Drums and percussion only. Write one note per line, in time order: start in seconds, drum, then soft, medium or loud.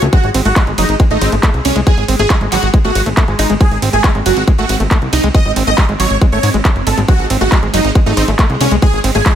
0.02 closed hi-hat medium
0.13 kick loud
0.13 closed hi-hat medium
0.24 closed hi-hat soft
0.34 open hi-hat loud
0.34 ride medium
0.45 closed hi-hat medium
0.56 kick loud
0.56 clap loud
0.56 closed hi-hat medium
0.67 closed hi-hat soft
0.78 open hi-hat loud
0.78 ride medium
0.89 closed hi-hat medium
1.00 kick loud
1.00 closed hi-hat medium
1.11 closed hi-hat soft
1.21 open hi-hat loud
1.21 ride medium
1.32 closed hi-hat medium
1.43 kick loud
1.43 clap loud
1.43 closed hi-hat medium
1.54 closed hi-hat soft
1.65 open hi-hat loud
1.65 ride medium
1.76 closed hi-hat medium
1.87 kick loud
1.87 closed hi-hat medium
1.98 closed hi-hat soft
2.08 open hi-hat loud
2.08 ride medium
2.19 closed hi-hat medium
2.30 kick loud
2.30 clap loud
2.30 closed hi-hat medium
2.41 closed hi-hat soft
2.52 clap soft
2.52 open hi-hat loud
2.52 ride medium
2.63 closed hi-hat medium
2.74 kick loud
2.74 closed hi-hat medium
2.85 closed hi-hat soft
2.95 open hi-hat loud
2.95 ride medium
3.06 closed hi-hat medium
3.17 kick loud
3.17 clap loud
3.17 closed hi-hat medium
3.28 closed hi-hat soft
3.39 open hi-hat loud
3.39 ride medium
3.50 closed hi-hat medium
3.61 kick loud
3.61 closed hi-hat medium
3.71 closed hi-hat soft
3.82 open hi-hat loud
3.82 ride medium
3.93 closed hi-hat soft
4.04 kick loud
4.04 clap loud
4.04 closed hi-hat medium
4.15 closed hi-hat soft
4.26 open hi-hat loud
4.26 ride medium
4.37 closed hi-hat soft
4.48 kick loud
4.48 closed hi-hat medium
4.58 closed hi-hat soft
4.69 open hi-hat loud
4.69 ride medium
4.80 closed hi-hat medium
4.91 kick loud
4.91 clap loud
4.91 closed hi-hat medium
5.02 closed hi-hat soft
5.13 open hi-hat loud
5.13 ride medium
5.24 closed hi-hat medium
5.35 kick loud
5.35 closed hi-hat medium
5.45 closed hi-hat soft
5.56 open hi-hat loud
5.56 ride medium
5.67 closed hi-hat soft
5.78 kick loud
5.78 clap loud
5.78 closed hi-hat medium
5.89 closed hi-hat soft
6.00 clap soft
6.00 open hi-hat loud
6.00 ride medium
6.11 closed hi-hat soft
6.21 kick loud
6.21 closed hi-hat medium
6.32 closed hi-hat soft
6.43 open hi-hat loud
6.43 ride medium
6.54 closed hi-hat soft
6.65 kick loud
6.65 clap loud
6.65 closed hi-hat medium
6.76 closed hi-hat soft
6.87 open hi-hat loud
6.87 ride medium
6.98 closed hi-hat medium
7.08 kick loud
7.08 closed hi-hat medium
7.19 closed hi-hat soft
7.30 open hi-hat loud
7.30 ride medium
7.41 closed hi-hat soft
7.52 kick loud
7.52 clap loud
7.52 closed hi-hat medium
7.63 closed hi-hat soft
7.74 open hi-hat loud
7.74 ride medium
7.85 closed hi-hat medium
7.95 kick loud
7.95 closed hi-hat medium
8.06 closed hi-hat soft
8.17 open hi-hat loud
8.17 ride medium
8.28 closed hi-hat medium
8.39 kick loud
8.39 clap loud
8.39 closed hi-hat medium
8.50 closed hi-hat soft
8.61 open hi-hat loud
8.61 ride medium
8.71 closed hi-hat medium
8.82 kick loud
8.82 closed hi-hat medium
8.93 closed hi-hat soft
9.04 open hi-hat loud
9.04 ride medium
9.15 closed hi-hat medium
9.26 kick loud
9.26 clap loud
9.26 closed hi-hat medium